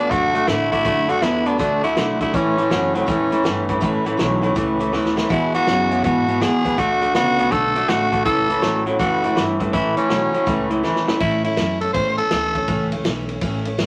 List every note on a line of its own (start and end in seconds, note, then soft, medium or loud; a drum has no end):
0.00 0.10 D4 soft
0.00 0.12 D4 loud
0.00 0.11 F#4 medium
0.10 0.47 F#2 medium
0.10 0.35 D3 medium
0.10 0.32 D3 medium
0.10 0.33 A3 medium
0.10 0.35 A3 medium
0.10 0.34 D4 medium
0.10 0.49 F#4 loud
0.10 0.33 F#4 medium
0.10 kick loud
0.10 closed hi-hat medium
0.34 0.46 D3 medium
0.34 0.47 A3 medium
0.34 0.47 A3 soft
0.34 0.47 D4 soft
0.34 0.47 F#4 medium
0.34 closed hi-hat medium
0.47 0.84 A2 medium
0.47 0.72 D3 medium
0.47 0.69 D3 medium
0.47 0.72 A3 medium
0.47 0.70 A3 medium
0.47 0.72 D4 medium
0.47 0.71 E4 loud
0.47 0.70 F#4 medium
0.47 snare loud
0.47 closed hi-hat medium
0.71 0.83 D3 medium
0.71 0.84 A3 medium
0.71 0.84 A3 soft
0.71 0.84 D4 soft
0.71 1.11 E4 loud
0.71 0.85 F#4 medium
0.71 kick medium
0.71 closed hi-hat medium
0.84 1.21 F#2 medium
0.84 1.09 D3 medium
0.84 1.07 D3 medium
0.84 1.09 A3 medium
0.84 1.07 A3 loud
0.84 1.09 D4 medium
0.84 1.08 F#4 medium
0.84 kick loud
0.84 closed hi-hat medium
1.09 1.21 D3 medium
1.09 1.21 A3 medium
1.09 1.22 D4 medium
1.09 1.22 F#4 medium
1.09 1.24 F#4 loud
1.09 closed hi-hat medium
1.22 1.59 E2 loud
1.22 1.46 D3 medium
1.22 1.44 D3 medium
1.22 1.46 A3 medium
1.22 1.44 B3 medium
1.22 1.46 D4 medium
1.22 1.48 E4 loud
1.22 1.44 F#4 medium
1.22 snare loud
1.22 closed hi-hat medium
1.46 1.58 D3 medium
1.46 1.57 A3 soft
1.46 1.58 B3 medium
1.46 1.59 D4 medium
1.46 1.58 D4 soft
1.46 1.58 F#4 medium
1.46 closed hi-hat medium
1.58 1.96 D2 medium
1.58 1.83 D3 medium
1.58 1.81 D3 medium
1.58 1.83 A3 medium
1.58 1.81 A3 medium
1.58 1.82 D4 medium
1.58 1.81 F#4 medium
1.58 kick loud
1.58 snare soft
1.58 closed hi-hat medium
1.82 1.95 D3 medium
1.82 1.95 A3 medium
1.82 1.95 A3 soft
1.82 1.96 D4 soft
1.82 2.18 E4 medium
1.82 1.96 F#4 medium
1.82 closed hi-hat medium
1.95 2.33 B1 medium
1.95 2.20 D3 medium
1.95 2.18 D3 medium
1.95 2.20 A3 medium
1.95 2.18 A3 medium
1.95 2.20 D4 medium
1.95 2.19 F#4 medium
1.95 snare loud
1.95 closed hi-hat medium
2.20 2.32 D3 medium
2.20 2.33 A3 medium
2.20 2.33 A3 soft
2.20 2.34 D4 soft
2.20 2.36 E4 medium
2.20 2.33 F#4 medium
2.20 kick medium
2.20 closed hi-hat medium
2.33 2.70 A1 medium
2.33 2.55 A2 medium
2.33 2.58 A2 medium
2.33 2.56 E3 medium
2.33 2.58 E3 medium
2.33 2.58 A3 medium
2.33 2.95 C#4 medium
2.33 2.57 C#4 loud
2.33 2.55 E4 medium
2.33 kick loud
2.33 closed hi-hat medium
2.57 2.69 A2 medium
2.57 2.70 E3 medium
2.57 2.69 A3 soft
2.57 2.70 C#4 medium
2.57 2.70 E4 medium
2.57 closed hi-hat medium
2.70 3.07 F#1 loud
2.70 2.92 A2 medium
2.70 2.94 E3 medium
2.70 2.93 F#3 loud
2.70 2.94 A3 medium
2.70 2.94 C#4 medium
2.70 2.92 E4 medium
2.70 snare loud
2.70 closed hi-hat medium
2.94 3.06 A2 medium
2.94 3.07 F#3 medium
2.94 3.06 A3 soft
2.94 3.06 C#4 soft
2.94 3.65 C#4 medium
2.94 3.07 E4 medium
2.94 closed hi-hat medium
3.06 3.44 E1 medium
3.06 3.31 A2 medium
3.06 3.30 A2 medium
3.06 3.31 E3 medium
3.06 3.30 E3 medium
3.06 3.31 A3 medium
3.06 3.31 C#4 medium
3.06 3.29 E4 medium
3.06 kick loud
3.06 snare soft
3.06 closed hi-hat medium
3.31 3.44 A2 medium
3.31 3.44 E3 medium
3.31 3.43 A3 soft
3.31 3.44 C#4 soft
3.31 3.44 E4 medium
3.31 closed hi-hat medium
3.44 3.81 G1 medium
3.44 3.66 A2 medium
3.44 3.68 E3 medium
3.44 3.67 E3 medium
3.44 3.69 A3 medium
3.44 3.68 C#4 medium
3.44 3.67 E4 medium
3.44 snare loud
3.44 closed hi-hat medium
3.68 3.81 A2 medium
3.68 3.81 E3 medium
3.68 3.80 A3 medium
3.68 3.80 C#4 medium
3.68 3.80 E4 medium
3.68 kick medium
3.68 closed hi-hat medium
3.80 4.18 A1 medium
3.80 4.05 A2 medium
3.80 4.04 A2 medium
3.80 4.05 E3 loud
3.80 4.04 E3 loud
3.80 4.05 A3 loud
3.80 4.04 C#4 loud
3.80 4.03 E4 loud
3.80 kick loud
3.80 closed hi-hat medium
4.05 4.17 A2 medium
4.05 4.18 E3 medium
4.05 4.16 A3 medium
4.05 4.17 C#4 medium
4.05 4.18 E4 medium
4.05 closed hi-hat medium
4.17 4.55 B1 loud
4.17 4.41 A2 medium
4.17 4.42 E3 medium
4.17 4.41 F#3 loud
4.17 4.42 A3 medium
4.17 4.42 C#4 medium
4.17 4.40 E4 medium
4.17 snare loud
4.17 closed hi-hat medium
4.42 4.55 A2 medium
4.42 4.55 F#3 medium
4.42 4.55 A3 medium
4.42 4.55 C#4 medium
4.42 4.55 E4 medium
4.42 closed hi-hat medium
4.55 4.92 C#2 medium
4.55 4.80 A2 medium
4.55 4.78 A2 medium
4.55 4.80 E3 medium
4.55 4.78 E3 loud
4.55 4.80 A3 medium
4.55 4.79 C#4 medium
4.55 4.78 E4 medium
4.55 kick loud
4.55 snare soft
4.55 closed hi-hat medium
4.79 4.92 A2 medium
4.79 4.92 E3 medium
4.79 4.92 A3 soft
4.79 4.92 C#4 soft
4.79 4.93 E4 medium
4.79 closed hi-hat medium
4.92 5.29 D2 medium
4.92 5.15 A2 medium
4.92 5.17 E3 medium
4.92 5.15 E3 medium
4.92 5.17 A3 medium
4.92 5.16 C#4 medium
4.92 5.15 E4 medium
4.92 snare medium
5.05 snare medium
5.16 5.29 A2 medium
5.16 5.29 E3 medium
5.16 5.29 A3 soft
5.16 5.29 C#4 medium
5.16 5.29 E4 medium
5.16 snare loud
5.29 5.54 E2 medium
5.29 5.52 E2 medium
5.29 5.66 E2 medium
5.29 5.54 B2 medium
5.29 5.52 B2 medium
5.29 5.54 E3 medium
5.29 5.53 G#3 medium
5.29 5.53 B3 medium
5.29 5.52 E4 medium
5.29 5.53 E4 loud
5.29 kick loud
5.29 closed hi-hat medium
5.53 5.66 E2 medium
5.53 5.66 B2 medium
5.53 5.65 E3 soft
5.53 5.65 G#3 soft
5.53 5.66 B3 soft
5.53 5.67 E4 medium
5.53 6.01 F#4 loud
5.53 closed hi-hat medium
5.66 5.89 E2 medium
5.66 6.03 F#2 loud
5.66 5.89 C#3 medium
5.66 5.91 E3 medium
5.66 5.91 G#3 medium
5.66 5.91 B3 medium
5.66 5.90 E4 medium
5.66 snare loud
5.66 closed hi-hat medium
5.91 6.03 E2 medium
5.91 6.03 C#3 medium
5.91 6.03 E3 soft
5.91 6.03 G#3 soft
5.91 6.03 B3 medium
5.91 6.04 E4 medium
5.91 closed hi-hat medium
6.03 6.28 E2 medium
6.03 6.26 E2 medium
6.03 6.40 G#2 medium
6.03 6.28 B2 medium
6.03 6.26 B2 medium
6.03 6.28 E3 medium
6.03 6.27 G#3 medium
6.03 6.27 B3 medium
6.03 6.26 E4 medium
6.03 6.43 F#4 medium
6.03 kick loud
6.03 closed hi-hat medium
6.27 6.40 E2 medium
6.27 6.40 B2 medium
6.27 6.39 E3 soft
6.27 6.40 G#3 medium
6.27 6.40 B3 soft
6.27 6.41 E4 medium
6.27 closed hi-hat medium
6.40 6.63 E2 medium
6.40 6.77 E2 medium
6.40 6.63 B2 medium
6.40 6.65 E3 medium
6.40 6.65 G#3 medium
6.40 6.64 B3 medium
6.40 6.64 E4 medium
6.40 6.80 G#4 loud
6.40 snare loud
6.40 closed hi-hat medium
6.65 6.77 E2 medium
6.65 6.77 B2 medium
6.65 6.77 E3 soft
6.65 6.78 G#3 soft
6.65 6.78 B3 medium
6.65 6.78 E4 medium
6.65 kick medium
6.65 closed hi-hat medium
6.78 7.14 D2 medium
6.78 7.02 D3 medium
6.78 7.00 D3 medium
6.78 7.02 A3 medium
6.78 7.00 A3 loud
6.78 7.01 D4 medium
6.78 7.15 F#4 loud
6.78 7.00 F#4 medium
6.78 kick loud
6.78 closed hi-hat medium
7.02 7.13 D3 medium
7.02 7.14 A3 medium
7.02 7.14 A3 soft
7.02 7.14 D4 soft
7.02 7.15 F#4 medium
7.02 closed hi-hat medium
7.14 7.51 C#2 loud
7.14 7.39 D3 medium
7.14 7.36 D3 medium
7.14 7.39 A3 medium
7.14 7.37 B3 loud
7.14 7.38 D4 medium
7.14 7.53 F#4 loud
7.14 7.37 F#4 medium
7.14 snare loud
7.14 closed hi-hat medium
7.38 7.50 D3 medium
7.38 7.50 A3 soft
7.38 7.51 B3 medium
7.38 7.50 D4 soft
7.38 7.51 F#4 medium
7.38 closed hi-hat medium
7.51 7.88 B1 medium
7.51 7.75 D3 medium
7.51 7.73 D3 medium
7.51 7.76 A3 medium
7.51 7.74 A3 medium
7.51 7.75 D4 medium
7.51 7.74 F#4 medium
7.51 7.90 A4 loud
7.51 kick loud
7.51 snare soft
7.51 closed hi-hat medium
7.75 7.87 D3 medium
7.75 7.87 A3 medium
7.75 7.87 A3 soft
7.75 7.88 D4 soft
7.75 7.88 F#4 medium
7.75 closed hi-hat medium
7.88 8.25 A1 medium
7.88 8.13 D3 medium
7.88 8.10 D3 medium
7.88 8.13 A3 medium
7.88 8.10 A3 medium
7.88 8.12 D4 medium
7.88 8.25 F#4 loud
7.88 8.11 F#4 medium
7.88 snare loud
7.88 closed hi-hat medium
8.12 8.24 D3 medium
8.12 8.24 A3 medium
8.12 8.25 A3 soft
8.12 8.26 D4 medium
8.12 8.26 F#4 medium
8.12 kick medium
8.12 closed hi-hat medium
8.25 8.62 C#2 medium
8.25 8.49 A2 medium
8.25 8.47 A2 medium
8.25 8.50 E3 medium
8.25 8.47 E3 loud
8.25 8.49 A3 medium
8.25 8.48 C#4 medium
8.25 8.47 E4 medium
8.25 8.82 A4 loud
8.25 kick loud
8.25 closed hi-hat medium
8.49 8.61 A2 medium
8.49 8.61 E3 medium
8.49 8.62 A3 soft
8.49 8.62 C#4 medium
8.49 8.62 E4 medium
8.49 closed hi-hat medium
8.62 8.98 A1 loud
8.62 8.84 A2 loud
8.62 8.86 E3 medium
8.62 8.84 F#3 loud
8.62 8.87 A3 medium
8.62 8.86 C#4 medium
8.62 8.85 E4 medium
8.62 snare loud
8.62 closed hi-hat medium
8.86 8.98 A2 medium
8.86 8.98 F#3 medium
8.86 8.98 A3 soft
8.86 8.99 C#4 medium
8.86 8.99 E4 medium
8.86 closed hi-hat medium
8.99 9.35 F#1 medium
8.99 9.21 A2 medium
8.99 9.23 A2 medium
8.99 9.23 E3 medium
8.99 9.21 E3 loud
8.99 9.24 A3 medium
8.99 9.23 C#4 medium
8.99 9.22 E4 medium
8.99 9.46 F#4 loud
8.99 kick loud
8.99 snare soft
8.99 closed hi-hat medium
9.23 9.35 A2 medium
9.23 9.35 E3 medium
9.23 9.35 A3 soft
9.23 9.36 C#4 soft
9.23 9.36 E4 medium
9.23 closed hi-hat medium
9.36 9.72 G1 medium
9.36 9.58 A2 medium
9.36 9.60 E3 medium
9.36 9.58 E3 loud
9.36 9.60 A3 medium
9.36 9.60 C#4 medium
9.36 9.59 E4 medium
9.36 snare loud
9.36 closed hi-hat medium
9.60 9.71 A2 medium
9.60 9.72 E3 medium
9.60 9.73 A3 soft
9.60 9.73 C#4 soft
9.60 9.73 E4 medium
9.60 kick medium
9.60 closed hi-hat medium
9.72 9.96 A1 medium
9.72 9.94 A2 medium
9.72 9.97 A2 medium
9.72 9.95 E3 loud
9.72 9.97 E3 medium
9.72 9.97 A3 medium
9.72 9.97 C#4 medium
9.72 9.96 E4 medium
9.72 kick loud
9.72 closed hi-hat medium
9.97 10.08 A2 medium
9.97 10.09 E3 medium
9.97 10.09 A3 medium
9.97 10.67 C#4 medium
9.97 10.10 C#4 medium
9.97 10.10 E4 medium
9.97 muted upright bass stroke soft
9.97 closed hi-hat medium
10.10 10.33 B1 loud
10.10 10.31 A2 medium
10.10 10.34 E3 medium
10.10 10.32 F#3 loud
10.10 10.34 A3 medium
10.10 10.33 C#4 medium
10.10 10.32 E4 medium
10.10 snare loud
10.10 closed hi-hat medium
10.33 10.46 A2 medium
10.33 10.46 F#3 medium
10.33 10.46 A3 soft
10.33 10.46 C#4 medium
10.33 10.47 E4 medium
10.33 muted upright bass stroke soft
10.33 closed hi-hat medium
10.46 10.83 C#2 medium
10.46 10.71 A2 medium
10.46 10.68 A2 medium
10.46 10.71 E3 medium
10.46 10.69 E3 medium
10.46 10.71 A3 medium
10.46 10.70 C#4 medium
10.46 10.69 E4 loud
10.46 kick loud
10.46 snare soft
10.46 closed hi-hat medium
10.70 10.82 A2 medium
10.70 10.83 E3 medium
10.70 10.83 A3 soft
10.70 10.83 C#4 medium
10.70 10.84 E4 medium
10.70 closed hi-hat medium
10.83 11.06 E2 medium
10.83 11.05 A2 medium
10.83 11.08 E3 medium
10.83 11.05 E3 medium
10.83 11.08 A3 medium
10.83 11.07 C#4 medium
10.83 11.07 E4 medium
10.83 snare medium
10.96 snare medium
11.08 11.19 A2 medium
11.08 11.20 E3 medium
11.08 11.20 A3 medium
11.08 11.20 C#4 medium
11.08 11.21 E4 medium
11.08 muted upright bass stroke soft
11.08 snare loud
11.20 11.45 A2 medium
11.20 11.57 A2 medium
11.20 11.45 E3 medium
11.20 11.45 A3 medium
11.20 11.44 C#4 medium
11.20 11.44 E4 loud
11.20 11.43 E4 medium
11.20 kick loud
11.20 ride medium
11.44 11.57 A3 soft
11.44 11.57 C#4 medium
11.44 11.57 E4 medium
11.44 11.80 E4 medium
11.44 ride medium
11.57 11.93 F#2 loud
11.57 11.81 E3 medium
11.57 11.82 A3 medium
11.57 11.82 C#4 medium
11.57 11.81 E4 medium
11.57 snare loud
11.57 ride medium
11.81 11.94 A3 soft
11.81 11.94 C#4 soft
11.81 11.94 E4 medium
11.81 11.92 A4 medium
11.81 ride medium
11.93 12.30 E2 medium
11.93 12.18 A2 medium
11.93 12.18 E3 medium
11.93 12.19 A3 medium
11.93 12.18 C#4 medium
11.93 12.17 E4 medium
11.93 12.17 C5 medium
11.93 kick loud
11.93 ride medium
12.18 12.31 A3 soft
12.18 12.31 C#4 soft
12.18 12.31 E4 medium
12.18 12.90 A4 loud
12.18 ride medium
12.31 12.67 D2 medium
12.31 12.55 E3 medium
12.31 12.55 A3 medium
12.31 12.54 C#4 medium
12.31 12.53 E4 medium
12.31 snare loud
12.31 ride medium
12.54 12.68 A3 soft
12.54 12.68 C#4 medium
12.54 12.68 E4 medium
12.54 kick medium
12.54 ride medium
12.68 13.04 C#2 medium
12.68 12.92 A2 medium
12.68 12.92 E3 medium
12.68 12.92 A3 loud
12.68 12.92 C#4 loud
12.68 12.91 E4 loud
12.68 kick loud
12.68 ride medium
12.92 13.05 A3 medium
12.92 13.05 C#4 medium
12.92 13.05 E4 medium
12.92 ride medium
13.05 13.41 B1 loud
13.05 13.29 E3 medium
13.05 13.30 A3 medium
13.05 13.29 C#4 medium
13.05 13.28 E4 medium
13.05 snare loud
13.05 ride medium
13.29 13.42 A3 soft
13.29 13.42 C#4 medium
13.29 13.42 E4 medium
13.29 ride medium
13.41 13.78 A1 medium
13.41 13.66 A2 medium
13.41 13.66 E3 medium
13.41 13.66 A3 medium
13.41 13.65 C#4 loud
13.41 13.64 E4 medium
13.41 kick loud
13.41 ride loud
13.65 13.77 A3 soft
13.65 13.78 C#4 medium
13.65 13.79 E4 medium
13.65 ride medium
13.78 13.86 G1 medium
13.78 13.86 E3 medium
13.78 13.86 A3 medium
13.78 13.86 C#4 medium
13.78 13.86 E4 medium
13.78 snare loud
13.78 ride medium